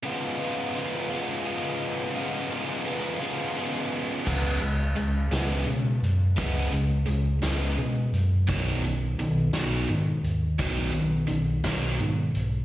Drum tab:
CC |------|------|x-----|------|
HH |------|------|-xxxxx|xxxxxx|
SD |------|------|---o--|---o--|
BD |------|------|o-----|o-----|

CC |------|------|
HH |xxxxxx|xxxxxx|
SD |---o--|---o--|
BD |o-----|o--o--|